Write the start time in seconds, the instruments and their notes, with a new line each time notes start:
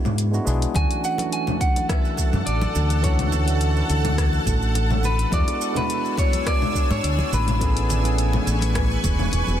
Already playing: tine electric piano G#3 B3 D4 E4 F#4
0.05 fingered electric bass G#2, low conga, shaker
0.18 closed hi-hat, shaker
0.31 tine electric piano G#3 B3 D4 E4 F#4, shaker
0.45 fingered electric bass B1, tine electric piano G#3 B3 D4 E4 G#4, shaker
0.62 closed hi-hat, shaker
0.73 fingered electric bass D2, tine electric piano E3 A3 C#4 D4 F#4, ambient pad A4 F#5 A5, clean electric guitar G#5, kick, closed hi-hat, muted conga, high conga, shaker
0.91 closed hi-hat, shaker
1.04 clean electric guitar F#5, shaker
1.16 tine electric piano E3 A3 C#4, closed hi-hat, muted conga, high conga, shaker
1.21 tine electric piano D4 F#4
1.32 clean electric guitar G#5, closed hi-hat, shaker
1.47 muted conga, low conga, shaker
1.61 clean electric guitar F#5, kick, closed hi-hat, shaker
1.76 closed hi-hat, high conga, shaker
1.89 clean electric guitar E5, kick, cross-stick, closed hi-hat, muted conga, shaker
2.05 shaker
2.17 kick, muted conga, high conga, shaker
2.33 fingered electric bass F#2, low conga, shaker
2.46 fingered electric bass A1, clean electric guitar D5, closed hi-hat, shaker
2.62 muted conga, high conga, shaker
2.75 fingered electric bass D2, low conga, shaker
2.90 closed hi-hat, muted conga, shaker
3.02 tine electric piano E3 A3 C#4 D4 F#4, clean electric guitar C#5, kick, closed hi-hat, high conga, shaker
3.19 closed hi-hat, low conga, shaker
3.32 muted conga, low conga, shaker
3.44 tine electric piano E3 A3 C#4, closed hi-hat, high conga, shaker
3.49 tine electric piano D4 F#4
3.60 closed hi-hat, muted conga, shaker
3.76 shaker
3.90 fingered electric bass D2, closed hi-hat, shaker
4.04 closed hi-hat, muted conga, high conga, low conga, shaker
4.18 kick, cross-stick, closed hi-hat, shaker
4.33 muted conga, shaker
4.46 fingered electric bass A1, kick, closed hi-hat, high conga, low conga, shaker
4.62 shaker
4.75 closed hi-hat, muted conga, shaker
4.91 high conga, low conga, shaker
5.03 clean electric guitar B4, muted conga, low conga, shaker
5.19 closed hi-hat, shaker
5.30 fingered electric bass E2, tine electric piano G#3 B3 D4 E4 F#4, ambient pad D4 G#5 E6, clean electric guitar D5, kick, closed hi-hat, high conga, shaker
5.48 closed hi-hat, muted conga, shaker
5.61 shaker
5.72 tine electric piano G#3 B3 D4, muted conga, high conga
5.76 tine electric piano E4 F#4, clean electric guitar B4, closed hi-hat, low conga, shaker
5.90 closed hi-hat, shaker
6.05 shaker
6.17 clean electric guitar C#5, kick, closed hi-hat, muted conga, shaker
6.33 closed hi-hat, high conga, shaker
6.46 clean electric guitar D5, kick, cross-stick, closed hi-hat, muted conga, shaker
6.62 low conga, shaker
6.75 kick, high conga, shaker
6.90 fingered electric bass G#2, clean electric guitar C#5, muted conga, shaker
7.03 fingered electric bass D2, closed hi-hat, shaker
7.19 muted conga, high conga, shaker
7.32 fingered electric bass A1, clean electric guitar B4, low conga, shaker
7.48 closed hi-hat, low conga, shaker
7.59 tine electric piano E3 A3 B3 C#4 G#4, ambient pad B4 G#5 C#6, kick, closed hi-hat, muted conga, high conga, shaker
7.77 closed hi-hat, shaker
7.89 closed hi-hat, muted conga, low conga, shaker
8.02 tine electric piano E3 A3 B3, closed hi-hat, high conga, shaker
8.07 tine electric piano C#4 G#4
8.18 closed hi-hat, shaker
8.33 muted conga, low conga, shaker
8.47 fingered electric bass A1, closed hi-hat, shaker
8.61 closed hi-hat, muted conga, high conga, shaker
8.75 kick, cross-stick, closed hi-hat, shaker
8.91 shaker
9.04 fingered electric bass E1, kick, closed hi-hat, muted conga, high conga, low conga, shaker
9.19 low conga, shaker
9.32 fingered electric bass E1, closed hi-hat, muted conga, shaker
9.47 fingered electric bass E1, high conga, shaker